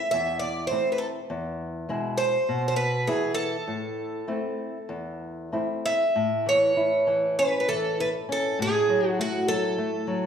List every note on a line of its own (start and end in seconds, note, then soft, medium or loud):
0.11 0.69 E2 medium
0.11 0.39 E5 medium
0.39 0.67 D5 medium
0.67 1.18 A3 soft
0.67 0.92 C5 medium
0.72 1.18 C4 soft
0.72 1.19 E4 soft
0.92 0.99 B4 soft
0.98 1.06 A4 medium
1.30 1.87 E2 medium
1.89 2.36 B2 soft
1.89 2.36 G#3 soft
1.89 2.36 E4 medium
2.18 2.67 C5 loud
2.49 3.05 B2 medium
2.68 2.76 C5 medium
2.76 3.07 B4 medium
3.07 3.55 E3 soft
3.07 3.55 B3 soft
3.07 3.55 E4 medium
3.07 3.34 G#4 medium
3.34 5.47 A4 medium
3.67 4.26 A2 medium
4.28 4.77 A3 soft
4.28 4.77 C4 soft
4.28 4.77 E4 soft
4.89 5.51 E2 medium
5.52 6.03 A3 soft
5.52 6.04 C4 soft
5.52 6.04 E4 soft
5.86 6.48 E5 medium
6.16 8.54 A2 medium
6.46 6.76 E3 soft
6.46 7.35 C#5 medium
6.77 7.07 E4 soft
7.07 7.37 E3 soft
7.39 7.68 C#4 medium
7.39 7.59 B4 medium
7.60 7.68 B4 medium
7.69 7.98 E3 soft
7.69 8.00 A4 medium
8.00 8.29 E4 soft
8.00 8.08 B4 medium
8.29 8.58 C#4 medium
8.29 8.59 A4 medium
8.59 10.26 A2 medium
8.59 9.08 G#4 medium
8.89 9.18 F#3 medium
9.08 9.20 F#4 medium
9.19 9.47 A3 medium
9.19 9.48 F#4 medium
9.48 9.77 F#3 medium
9.48 10.26 A4 loud
9.78 10.06 A3 medium
10.07 10.26 F#3 soft